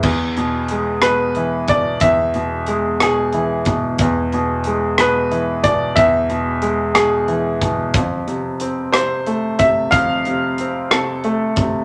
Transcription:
<<
  \new Staff \with { instrumentName = "Grand piano" } { \time 6/8 \key e \phrygian \tempo 4. = 61 r4. b'4 d''8 | e''4. gis'4 r8 | r4. b'4 d''8 | e''4. gis'4 r8 |
r4. c''4 e''8 | f''4. a'4 r8 | }
  \new Staff \with { instrumentName = "Grand piano" } { \clef bass \time 6/8 \key e \phrygian e,8 b,8 gis8 b,8 e8 b,8 | e,8 b,8 gis8 b,8 e8 b,8 | e,8 b,8 gis8 b,8 e8 b,8 | e,8 b,8 gis8 b,8 e8 b,8 |
f,8 c8 c'8 c8 a8 c8 | f,8 c8 c'8 c8 a8 c8 | }
  \new DrumStaff \with { instrumentName = "Drums" } \drummode { \time 6/8 <cymc bd>8 hh8 hh8 <hh ss>8 hh8 <hh bd>8 | <hh bd>8 hh8 hh8 <hh ss>8 hh8 <hh bd>8 | <hh bd>8 hh8 hh8 <hh ss>8 hh8 <hh bd>8 | <hh bd>8 hh8 hh8 <hh ss>8 hh8 <hh bd>8 |
<hh bd>8 hh8 hh8 <hh ss>8 hh8 <hh bd>8 | <hh bd>8 hh8 hh8 <hh ss>8 hh8 <hh bd>8 | }
>>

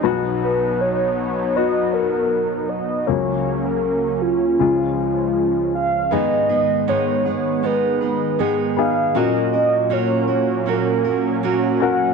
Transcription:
<<
  \new Staff \with { instrumentName = "Soft synth lead" } { \time 4/4 \key fis \major \tempo 4 = 79 r8 b'8 cis''4 dis''8 ais'4 dis''8 | cis''8. ais'8. eis'2 eis''8 | dis''4 cis''4 b'4 gis'8 eis''8 | dis''4 cis''4 ais'4 fis'8 fis''8 | }
  \new Staff \with { instrumentName = "Grand piano" } { \time 4/4 \key fis \major <b dis' fis'>2 <b dis' fis'>2 | <fis ais cis'>2 <gis cis' eis'>2 | <b dis' gis'>2 r4. <b dis' gis'>8 | <cis' fis' ais'>2 r4. <cis' fis' ais'>8 | }
  \new Staff \with { instrumentName = "Grand piano" } { \clef bass \time 4/4 \key fis \major <b,, b,>1 | <cis, cis>2 <cis, cis>2 | gis,4. r2 r8 | ais,4. r2 r8 | }
  \new Staff \with { instrumentName = "Steel-string acoustic guitar" } { \time 4/4 \key fis \major r1 | r1 | <gis, dis gis b dis' gis'>8 <gis b dis' gis'>8 <gis, dis gis b dis' gis'>8 <gis b dis' gis'>8 <gis b dis' gis'>8 <gis b dis' gis'>8 <gis, dis gis b dis' gis'>4 | <ais cis' fis' ais'>8 <cis' fis' ais'>8 <ais cis' fis' ais'>8 <cis' fis' ais'>8 <ais cis' fis' ais'>8 <cis' fis' ais'>8 <ais cis' fis' ais'>4 | }
  \new Staff \with { instrumentName = "Analog synth pad" } { \clef bass \time 4/4 \key fis \major << { r1 | cis'1 | b1 | cis'1 | } \\ { <fis b dis'>1 | <cis fis ais>2 <eis gis>2 | <dis gis>1 | <ais, fis ais>1 | } >> }
>>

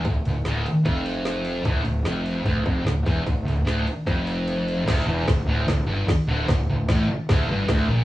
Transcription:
<<
  \new Staff \with { instrumentName = "Distorted electric guitar" } { \clef bass \time 4/4 \key d \minor \tempo 4 = 150 d,8 d,8 d,8 r8 f,2 | d,8 d,8 f,4 d,8 f,8 d,8 e,8 | d,8 d,8 d,8 r8 f,2 | d,8 e,8 d,8 d,8 d,8 g,8 r8 d,8 |
d,8 d,8 a,8 r8 d,8 g,8 d,8 bes,8 | }
  \new Staff \with { instrumentName = "Fingered electric bass" } { \clef bass \time 4/4 \key d \minor d,,8 d,,8 d,,8 r8 f,,2 | d,,8 d,,8 f,,4 d,,8 f,,8 d,,8 e,,8 | d,,8 d,,8 d,,8 r8 f,,2 | d,,8 e,,8 d,,8 d,,8 d,,8 g,,8 r8 d,,8 |
d,,8 d,,8 a,,8 r8 d,,8 g,,8 d,,8 bes,,8 | }
  \new DrumStaff \with { instrumentName = "Drums" } \drummode { \time 4/4 <bd cymr>8 cymr8 <cymr sn>8 cymr8 <bd cymr>8 cymr8 <cymr sn>8 cymr8 | <bd cymr>8 cymr8 <cymr sn>8 cymr8 <bd cymr>8 <bd cymr>8 <cymr sn>8 <bd cymr>8 | <bd cymr>8 cymr8 <cymr sn>8 cymr8 <bd cymr>8 cymr8 cymr8 cymr8 | <cymc bd sn>4 <cymc bd sn>4 <cymc bd sn>4 <cymc bd sn>4 |
<cymc bd sn>4 <cymc bd sn>4 <cymc bd sn>4 <cymc bd sn>4 | }
>>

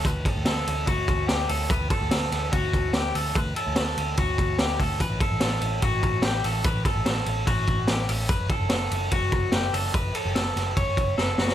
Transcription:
<<
  \new Staff \with { instrumentName = "Clean electric guitar" } { \time 4/4 \key d \major \tempo 4 = 146 b'8 a'8 a'4 fis'4 g'8 a'8 | b'8 a'8 a'4 fis'4 g'8 a'8 | b'8 a'8 a'4 fis'4 g'8 a'8 | b'8 a'8 a'4 fis'4 g'8 a'8 |
b'8 a'8 a'4 fis'4 g'8 a'8 | b'8 a'8 a'4 fis'4 g'8 a'8 | b'8 a'8 a'4 cis''4 a'8 fis'8 | }
  \new Staff \with { instrumentName = "Picked electric bass" } { \clef bass \time 4/4 \key d \major d,8 r16 d,16 d,8 d,8 d,8 d,8 d,8 d,8 | d,8 r16 d,16 d,8 d,8 d,8 d,8 d,8 d,8 | d,8 r16 d,16 d,8 d,8 d,8 d,8 d,8 d,8 | a,,8 r16 a,,16 a,,8 a,,8 a,,8 a,,8 a,,8 a,,8 |
a,,8 r16 a,,16 a,,8 a,,8 a,,8 a,,8 a,,8 a,,8 | fis,,8 r16 fis,,16 fis,,8 fis,,8 fis,,8 fis,,8 fis,,8 fis,,8 | fis,,8 r16 fis,,16 fis,,8 fis,,8 fis,,8 fis,,8 fis,,8 fis,,8 | }
  \new DrumStaff \with { instrumentName = "Drums" } \drummode { \time 4/4 <hhp bd cymr>8 <bd cymr>8 <cymr sn>8 cymr8 <bd cymr>8 <bd cymr>8 <cymr sn>8 <hho cymr>8 | <hhp bd cymr>8 <bd cymr>8 <cymr sn>8 <cymr sn>8 <bd cymr>8 <bd cymr>8 <cymr sn>8 <hho cymr>8 | <hhp bd cymr>8 cymr8 <cymr sn>8 cymr8 <bd cymr>8 <bd cymr>8 <cymr sn>8 <hho bd cymr>8 | <hhp bd cymr>8 <bd cymr>8 <cymr sn>8 cymr8 <bd cymr>8 <bd cymr>8 <cymr sn>8 <hho cymr>8 |
<hhp bd cymr>8 <bd cymr>8 <cymr sn>8 cymr8 <bd cymr>8 <bd cymr>8 <cymr sn>8 <hho cymr>8 | <hhp bd cymr>8 <bd cymr>8 <cymr sn>8 cymr8 <bd cymr>8 <bd cymr>8 <cymr sn>8 <hho cymr>8 | <hhp bd cymr>8 cymr8 <cymr sn>8 <cymr sn>8 <bd cymr>8 <bd cymr>8 sn8 sn16 sn16 | }
>>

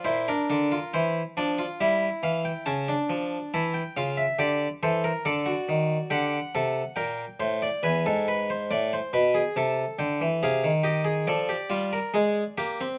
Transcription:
<<
  \new Staff \with { instrumentName = "Harpsichord" } { \time 3/4 \key bes \major \tempo 4 = 69 << { c''16 bes'8. c''8 d''8 e''8 f''16 g''16 | a''4 a''16 g''16 f''16 e''16 d''8 c''8 | d''4 fis''4 g''4 | gis''2 a''8 g''8 |
\key f \dorian f''8 ees''8 d''2 | } \\ { e'16 d'16 d'16 f'16 e'8 d'16 f'16 e'4 | cis'16 d'8. e'8 f'8 g'8 a'16 bes'16 | a'16 fis'8. g'8 a'8 bes'8 c''16 d''16 | b'16 a'16 b'16 c''16 d''16 c''16 b'16 gis'16 a'4 |
aes'8 g'16 aes'16 a'16 g'16 f'16 bes'16 aes'8 g'8 | } >> }
  \new Staff \with { instrumentName = "Harpsichord" } { \clef bass \time 3/4 \key bes \major bes,8 d8 e8 f8 g8 e8 | cis8 f8 e8 cis8 d8 e8 | d8 ees8 d8 c8 bes,8 a,8 | e,16 gis,8. a,8 b,8 c8 d16 e16 |
\key f \dorian c16 ees8. f8 g8 aes8 bes16 c'16 | }
>>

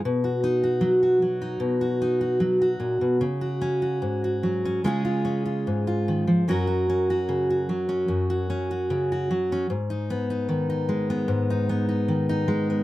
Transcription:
\new Staff \with { instrumentName = "Steel-string acoustic guitar" } { \time 4/4 \key fis \major \tempo 4 = 75 << { r16 fis'16 dis'16 fis'8 fis'8 dis'8 fis'16 dis'16 fis'8 fis'8. | r16 fis'16 cis'16 fis'8 fis'8 cis'16 <gis cis' eis' gis'>16 eis'16 cis'16 eis'8 eis'8. | <fis cis' fis' ais'>16 fis'16 cis'16 fis'8 fis'8 cis'8 fis'16 cis'16 fis'8 fis'8 cis'16 | r16 dis'16 b16 dis'8 dis'8 b8 dis'16 b16 dis'8 dis'8 b16 | } \\ { b,4 fis8 fis8 b,4 fis8 ais,16 b,16 | cis4 gis,8 fis8 cis4 gis,8 dis16 eis16 | fis,4 cis8 fis8 fis,4 cis8 fis8 | gis,4 dis8 gis8 gis,4 dis8 gis8 | } >> }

